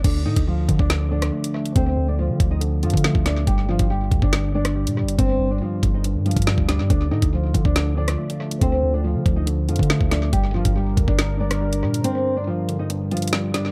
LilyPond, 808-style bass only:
\new Staff \with { instrumentName = "808-style bass" } { \clef bass \time 4/4 \key d \phrygian \tempo 4 = 140 d,8 a,16 d,8. d16 d,4~ d,16 r4 | d,8 d,8. d16 d,4 f,16 d8 d,8. | g,,8. g,,8. d,16 g,,4. bes,16. g,,16. | g,,8 g,,8 r8 g,,8. g,8 g,8 d,8 g,16 |
d,8 a,16 d,8. d16 d,4~ d,16 r4 | d,8 d,8. d16 d,4 f,16 d8 d,8. | g,,8. g,,8. d,16 g,,4.~ g,,16 bes,8 | r1 | }